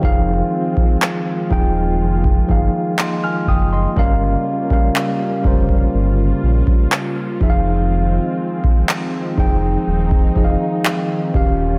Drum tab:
CP |----x-------x---|----x-------x---|----x-------x---|
BD |o--o--o--oo---o-|o--o--oo---o--o-|---o--o--oo---o-|